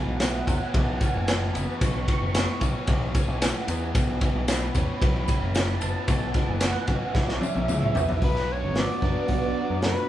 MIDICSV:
0, 0, Header, 1, 6, 480
1, 0, Start_track
1, 0, Tempo, 534759
1, 1629, Time_signature, 4, 2, 24, 8
1, 9054, End_track
2, 0, Start_track
2, 0, Title_t, "Analog synth lead"
2, 0, Program_c, 0, 81
2, 7396, Note_on_c, 0, 71, 106
2, 7643, Note_on_c, 0, 73, 98
2, 7656, Note_off_c, 0, 71, 0
2, 7885, Note_on_c, 0, 74, 102
2, 7899, Note_off_c, 0, 73, 0
2, 8354, Note_off_c, 0, 74, 0
2, 8365, Note_on_c, 0, 74, 104
2, 8802, Note_off_c, 0, 74, 0
2, 8845, Note_on_c, 0, 71, 99
2, 9054, Note_off_c, 0, 71, 0
2, 9054, End_track
3, 0, Start_track
3, 0, Title_t, "String machine"
3, 0, Program_c, 1, 50
3, 1480, Note_on_c, 1, 85, 123
3, 2639, Note_off_c, 1, 85, 0
3, 7379, Note_on_c, 1, 62, 70
3, 7380, Note_on_c, 1, 66, 85
3, 7382, Note_on_c, 1, 54, 78
3, 7385, Note_on_c, 1, 59, 73
3, 9054, Note_off_c, 1, 54, 0
3, 9054, Note_off_c, 1, 59, 0
3, 9054, Note_off_c, 1, 62, 0
3, 9054, Note_off_c, 1, 66, 0
3, 9054, End_track
4, 0, Start_track
4, 0, Title_t, "Overdriven electric guitar"
4, 0, Program_c, 2, 29
4, 0, Note_on_c, 2, 47, 75
4, 0, Note_on_c, 2, 52, 64
4, 197, Note_on_c, 2, 59, 67
4, 433, Note_on_c, 2, 61, 69
4, 675, Note_off_c, 2, 52, 0
4, 678, Note_on_c, 2, 52, 74
4, 908, Note_off_c, 2, 61, 0
4, 912, Note_on_c, 2, 61, 68
4, 914, Note_off_c, 2, 47, 0
4, 1147, Note_off_c, 2, 52, 0
4, 1151, Note_on_c, 2, 52, 69
4, 1367, Note_off_c, 2, 59, 0
4, 1378, Note_on_c, 2, 59, 72
4, 1631, Note_on_c, 2, 47, 68
4, 1859, Note_off_c, 2, 52, 0
4, 1863, Note_on_c, 2, 52, 65
4, 2098, Note_off_c, 2, 59, 0
4, 2109, Note_on_c, 2, 59, 71
4, 2136, Note_off_c, 2, 61, 0
4, 2345, Note_on_c, 2, 61, 65
4, 2572, Note_off_c, 2, 52, 0
4, 2576, Note_on_c, 2, 52, 75
4, 2826, Note_off_c, 2, 61, 0
4, 2830, Note_off_c, 2, 47, 0
4, 2830, Note_on_c, 2, 61, 73
4, 3065, Note_off_c, 2, 52, 0
4, 3069, Note_on_c, 2, 52, 71
4, 3299, Note_off_c, 2, 59, 0
4, 3310, Note_on_c, 2, 59, 72
4, 3543, Note_on_c, 2, 47, 71
4, 3781, Note_off_c, 2, 52, 0
4, 3785, Note_on_c, 2, 52, 64
4, 4010, Note_off_c, 2, 59, 0
4, 4021, Note_on_c, 2, 59, 69
4, 4047, Note_off_c, 2, 61, 0
4, 4263, Note_on_c, 2, 61, 68
4, 4495, Note_off_c, 2, 52, 0
4, 4505, Note_on_c, 2, 52, 75
4, 4742, Note_off_c, 2, 61, 0
4, 4743, Note_off_c, 2, 47, 0
4, 4753, Note_on_c, 2, 61, 70
4, 4974, Note_off_c, 2, 52, 0
4, 4985, Note_on_c, 2, 52, 70
4, 5211, Note_off_c, 2, 59, 0
4, 5222, Note_on_c, 2, 59, 73
4, 5462, Note_on_c, 2, 47, 71
4, 5688, Note_off_c, 2, 52, 0
4, 5699, Note_on_c, 2, 52, 70
4, 5926, Note_off_c, 2, 59, 0
4, 5937, Note_on_c, 2, 59, 71
4, 5947, Note_off_c, 2, 61, 0
4, 6175, Note_on_c, 2, 61, 67
4, 6406, Note_off_c, 2, 52, 0
4, 6417, Note_on_c, 2, 52, 76
4, 6649, Note_off_c, 2, 61, 0
4, 6659, Note_on_c, 2, 61, 68
4, 6661, Note_off_c, 2, 47, 0
4, 6892, Note_off_c, 2, 52, 0
4, 6903, Note_on_c, 2, 52, 75
4, 7134, Note_off_c, 2, 59, 0
4, 7145, Note_on_c, 2, 59, 72
4, 7369, Note_on_c, 2, 47, 79
4, 7379, Note_off_c, 2, 52, 0
4, 7381, Note_off_c, 2, 61, 0
4, 7382, Note_on_c, 2, 54, 81
4, 7383, Note_off_c, 2, 59, 0
4, 7396, Note_on_c, 2, 59, 88
4, 7406, Note_on_c, 2, 62, 92
4, 8081, Note_off_c, 2, 47, 0
4, 8095, Note_off_c, 2, 59, 0
4, 8101, Note_off_c, 2, 62, 0
4, 8105, Note_on_c, 2, 62, 80
4, 8114, Note_on_c, 2, 59, 76
4, 8119, Note_off_c, 2, 54, 0
4, 8123, Note_on_c, 2, 54, 66
4, 8131, Note_on_c, 2, 47, 62
4, 9054, Note_off_c, 2, 47, 0
4, 9054, Note_off_c, 2, 54, 0
4, 9054, Note_off_c, 2, 59, 0
4, 9054, Note_off_c, 2, 62, 0
4, 9054, End_track
5, 0, Start_track
5, 0, Title_t, "Picked electric bass"
5, 0, Program_c, 3, 34
5, 65, Note_on_c, 3, 35, 77
5, 370, Note_off_c, 3, 35, 0
5, 424, Note_on_c, 3, 40, 87
5, 527, Note_off_c, 3, 40, 0
5, 668, Note_on_c, 3, 35, 98
5, 871, Note_off_c, 3, 35, 0
5, 1040, Note_on_c, 3, 30, 88
5, 1340, Note_off_c, 3, 30, 0
5, 1395, Note_on_c, 3, 30, 88
5, 1494, Note_off_c, 3, 30, 0
5, 1626, Note_on_c, 3, 35, 85
5, 1830, Note_off_c, 3, 35, 0
5, 1991, Note_on_c, 3, 30, 81
5, 2193, Note_off_c, 3, 30, 0
5, 2349, Note_on_c, 3, 35, 97
5, 2450, Note_off_c, 3, 35, 0
5, 2585, Note_on_c, 3, 35, 104
5, 2790, Note_off_c, 3, 35, 0
5, 2946, Note_on_c, 3, 35, 91
5, 3150, Note_off_c, 3, 35, 0
5, 3306, Note_on_c, 3, 40, 90
5, 3510, Note_off_c, 3, 40, 0
5, 3545, Note_on_c, 3, 35, 94
5, 3850, Note_off_c, 3, 35, 0
5, 3906, Note_on_c, 3, 35, 83
5, 4211, Note_off_c, 3, 35, 0
5, 4264, Note_on_c, 3, 40, 94
5, 4367, Note_off_c, 3, 40, 0
5, 4506, Note_on_c, 3, 35, 103
5, 4709, Note_off_c, 3, 35, 0
5, 4863, Note_on_c, 3, 30, 87
5, 5168, Note_off_c, 3, 30, 0
5, 5228, Note_on_c, 3, 30, 91
5, 5328, Note_off_c, 3, 30, 0
5, 5459, Note_on_c, 3, 35, 91
5, 5664, Note_off_c, 3, 35, 0
5, 5820, Note_on_c, 3, 30, 80
5, 6024, Note_off_c, 3, 30, 0
5, 6176, Note_on_c, 3, 35, 94
5, 6280, Note_off_c, 3, 35, 0
5, 6416, Note_on_c, 3, 35, 102
5, 6622, Note_off_c, 3, 35, 0
5, 6786, Note_on_c, 3, 35, 92
5, 6886, Note_off_c, 3, 35, 0
5, 6911, Note_on_c, 3, 37, 91
5, 7123, Note_off_c, 3, 37, 0
5, 7150, Note_on_c, 3, 35, 90
5, 7362, Note_off_c, 3, 35, 0
5, 7381, Note_on_c, 3, 35, 86
5, 7746, Note_on_c, 3, 32, 75
5, 7759, Note_off_c, 3, 35, 0
5, 7947, Note_off_c, 3, 32, 0
5, 8098, Note_on_c, 3, 42, 77
5, 8201, Note_off_c, 3, 42, 0
5, 8341, Note_on_c, 3, 35, 85
5, 8545, Note_off_c, 3, 35, 0
5, 8709, Note_on_c, 3, 42, 81
5, 8909, Note_off_c, 3, 42, 0
5, 9054, End_track
6, 0, Start_track
6, 0, Title_t, "Drums"
6, 179, Note_on_c, 9, 51, 85
6, 182, Note_on_c, 9, 38, 102
6, 194, Note_on_c, 9, 54, 84
6, 268, Note_off_c, 9, 51, 0
6, 272, Note_off_c, 9, 38, 0
6, 283, Note_off_c, 9, 54, 0
6, 425, Note_on_c, 9, 36, 77
6, 426, Note_on_c, 9, 51, 64
6, 440, Note_on_c, 9, 54, 68
6, 514, Note_off_c, 9, 36, 0
6, 516, Note_off_c, 9, 51, 0
6, 530, Note_off_c, 9, 54, 0
6, 666, Note_on_c, 9, 36, 108
6, 667, Note_on_c, 9, 51, 87
6, 756, Note_off_c, 9, 36, 0
6, 757, Note_off_c, 9, 51, 0
6, 904, Note_on_c, 9, 51, 66
6, 906, Note_on_c, 9, 36, 83
6, 918, Note_on_c, 9, 54, 64
6, 994, Note_off_c, 9, 51, 0
6, 996, Note_off_c, 9, 36, 0
6, 1008, Note_off_c, 9, 54, 0
6, 1147, Note_on_c, 9, 51, 93
6, 1151, Note_on_c, 9, 38, 114
6, 1157, Note_on_c, 9, 54, 83
6, 1237, Note_off_c, 9, 51, 0
6, 1241, Note_off_c, 9, 38, 0
6, 1246, Note_off_c, 9, 54, 0
6, 1391, Note_on_c, 9, 51, 65
6, 1403, Note_on_c, 9, 54, 66
6, 1481, Note_off_c, 9, 51, 0
6, 1493, Note_off_c, 9, 54, 0
6, 1627, Note_on_c, 9, 36, 106
6, 1627, Note_on_c, 9, 51, 95
6, 1637, Note_on_c, 9, 54, 65
6, 1717, Note_off_c, 9, 36, 0
6, 1717, Note_off_c, 9, 51, 0
6, 1727, Note_off_c, 9, 54, 0
6, 1866, Note_on_c, 9, 36, 79
6, 1868, Note_on_c, 9, 51, 72
6, 1873, Note_on_c, 9, 54, 26
6, 1956, Note_off_c, 9, 36, 0
6, 1958, Note_off_c, 9, 51, 0
6, 1962, Note_off_c, 9, 54, 0
6, 2105, Note_on_c, 9, 51, 90
6, 2109, Note_on_c, 9, 38, 105
6, 2115, Note_on_c, 9, 54, 91
6, 2195, Note_off_c, 9, 51, 0
6, 2199, Note_off_c, 9, 38, 0
6, 2205, Note_off_c, 9, 54, 0
6, 2343, Note_on_c, 9, 51, 67
6, 2345, Note_on_c, 9, 36, 74
6, 2360, Note_on_c, 9, 54, 72
6, 2433, Note_off_c, 9, 51, 0
6, 2435, Note_off_c, 9, 36, 0
6, 2449, Note_off_c, 9, 54, 0
6, 2579, Note_on_c, 9, 51, 86
6, 2584, Note_on_c, 9, 36, 105
6, 2669, Note_off_c, 9, 51, 0
6, 2673, Note_off_c, 9, 36, 0
6, 2824, Note_on_c, 9, 51, 74
6, 2825, Note_on_c, 9, 36, 88
6, 2834, Note_on_c, 9, 54, 67
6, 2913, Note_off_c, 9, 51, 0
6, 2915, Note_off_c, 9, 36, 0
6, 2924, Note_off_c, 9, 54, 0
6, 3067, Note_on_c, 9, 51, 100
6, 3068, Note_on_c, 9, 54, 90
6, 3071, Note_on_c, 9, 38, 114
6, 3157, Note_off_c, 9, 51, 0
6, 3158, Note_off_c, 9, 54, 0
6, 3161, Note_off_c, 9, 38, 0
6, 3303, Note_on_c, 9, 54, 76
6, 3305, Note_on_c, 9, 51, 71
6, 3393, Note_off_c, 9, 54, 0
6, 3395, Note_off_c, 9, 51, 0
6, 3544, Note_on_c, 9, 36, 105
6, 3544, Note_on_c, 9, 51, 94
6, 3549, Note_on_c, 9, 54, 71
6, 3634, Note_off_c, 9, 36, 0
6, 3634, Note_off_c, 9, 51, 0
6, 3639, Note_off_c, 9, 54, 0
6, 3780, Note_on_c, 9, 51, 70
6, 3783, Note_on_c, 9, 36, 77
6, 3788, Note_on_c, 9, 54, 26
6, 3870, Note_off_c, 9, 51, 0
6, 3873, Note_off_c, 9, 36, 0
6, 3877, Note_off_c, 9, 54, 0
6, 4021, Note_on_c, 9, 54, 94
6, 4022, Note_on_c, 9, 51, 84
6, 4025, Note_on_c, 9, 38, 105
6, 4111, Note_off_c, 9, 51, 0
6, 4111, Note_off_c, 9, 54, 0
6, 4115, Note_off_c, 9, 38, 0
6, 4259, Note_on_c, 9, 54, 75
6, 4263, Note_on_c, 9, 36, 77
6, 4266, Note_on_c, 9, 51, 67
6, 4348, Note_off_c, 9, 54, 0
6, 4353, Note_off_c, 9, 36, 0
6, 4356, Note_off_c, 9, 51, 0
6, 4502, Note_on_c, 9, 36, 106
6, 4506, Note_on_c, 9, 51, 85
6, 4592, Note_off_c, 9, 36, 0
6, 4596, Note_off_c, 9, 51, 0
6, 4737, Note_on_c, 9, 54, 71
6, 4743, Note_on_c, 9, 36, 84
6, 4746, Note_on_c, 9, 51, 68
6, 4827, Note_off_c, 9, 54, 0
6, 4833, Note_off_c, 9, 36, 0
6, 4836, Note_off_c, 9, 51, 0
6, 4978, Note_on_c, 9, 54, 94
6, 4985, Note_on_c, 9, 51, 88
6, 4988, Note_on_c, 9, 38, 110
6, 5068, Note_off_c, 9, 54, 0
6, 5074, Note_off_c, 9, 51, 0
6, 5078, Note_off_c, 9, 38, 0
6, 5216, Note_on_c, 9, 54, 79
6, 5221, Note_on_c, 9, 51, 65
6, 5305, Note_off_c, 9, 54, 0
6, 5310, Note_off_c, 9, 51, 0
6, 5456, Note_on_c, 9, 51, 89
6, 5458, Note_on_c, 9, 36, 104
6, 5458, Note_on_c, 9, 54, 71
6, 5546, Note_off_c, 9, 51, 0
6, 5548, Note_off_c, 9, 36, 0
6, 5548, Note_off_c, 9, 54, 0
6, 5692, Note_on_c, 9, 51, 66
6, 5696, Note_on_c, 9, 54, 27
6, 5697, Note_on_c, 9, 36, 76
6, 5782, Note_off_c, 9, 51, 0
6, 5786, Note_off_c, 9, 54, 0
6, 5787, Note_off_c, 9, 36, 0
6, 5929, Note_on_c, 9, 51, 89
6, 5932, Note_on_c, 9, 54, 87
6, 5933, Note_on_c, 9, 38, 105
6, 6019, Note_off_c, 9, 51, 0
6, 6022, Note_off_c, 9, 38, 0
6, 6022, Note_off_c, 9, 54, 0
6, 6171, Note_on_c, 9, 51, 64
6, 6176, Note_on_c, 9, 36, 77
6, 6260, Note_off_c, 9, 51, 0
6, 6266, Note_off_c, 9, 36, 0
6, 6414, Note_on_c, 9, 38, 58
6, 6416, Note_on_c, 9, 36, 104
6, 6419, Note_on_c, 9, 54, 27
6, 6503, Note_off_c, 9, 38, 0
6, 6506, Note_off_c, 9, 36, 0
6, 6509, Note_off_c, 9, 54, 0
6, 6540, Note_on_c, 9, 38, 60
6, 6630, Note_off_c, 9, 38, 0
6, 6652, Note_on_c, 9, 48, 70
6, 6671, Note_on_c, 9, 54, 69
6, 6742, Note_off_c, 9, 48, 0
6, 6761, Note_off_c, 9, 54, 0
6, 6773, Note_on_c, 9, 48, 61
6, 6863, Note_off_c, 9, 48, 0
6, 6897, Note_on_c, 9, 47, 88
6, 6904, Note_on_c, 9, 54, 90
6, 6987, Note_off_c, 9, 47, 0
6, 6993, Note_off_c, 9, 54, 0
6, 7019, Note_on_c, 9, 45, 79
6, 7108, Note_off_c, 9, 45, 0
6, 7137, Note_on_c, 9, 43, 92
6, 7153, Note_on_c, 9, 54, 68
6, 7227, Note_off_c, 9, 43, 0
6, 7243, Note_off_c, 9, 54, 0
6, 7258, Note_on_c, 9, 43, 81
6, 7348, Note_off_c, 9, 43, 0
6, 7376, Note_on_c, 9, 46, 49
6, 7378, Note_on_c, 9, 36, 95
6, 7465, Note_off_c, 9, 46, 0
6, 7468, Note_off_c, 9, 36, 0
6, 7502, Note_on_c, 9, 38, 29
6, 7591, Note_off_c, 9, 38, 0
6, 7857, Note_on_c, 9, 46, 44
6, 7861, Note_on_c, 9, 38, 94
6, 7947, Note_off_c, 9, 46, 0
6, 7951, Note_off_c, 9, 38, 0
6, 8098, Note_on_c, 9, 36, 77
6, 8188, Note_off_c, 9, 36, 0
6, 8332, Note_on_c, 9, 46, 43
6, 8338, Note_on_c, 9, 36, 74
6, 8422, Note_off_c, 9, 46, 0
6, 8428, Note_off_c, 9, 36, 0
6, 8817, Note_on_c, 9, 46, 48
6, 8821, Note_on_c, 9, 38, 105
6, 8907, Note_off_c, 9, 46, 0
6, 8910, Note_off_c, 9, 38, 0
6, 9054, End_track
0, 0, End_of_file